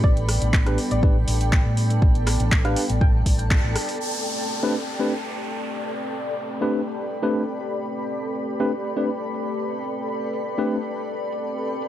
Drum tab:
HH |-xox-xox--ox--ox|-xox-xox--ox--oo|-------x---x----|---x-x-x---x---x|
CP |----x-------x---|--x-x-------x---|----------------|----------------|
SD |--r--r----------|--r--r--------r-|----------------|----------------|
BD |o---o---o---o---|o---o---o-o-o---|----------------|----------------|

HH |-x-x-x-x---x---x|-x-x-x-x---x---x|
CP |----------------|----------------|
SD |----------------|----------------|
BD |----------------|----------------|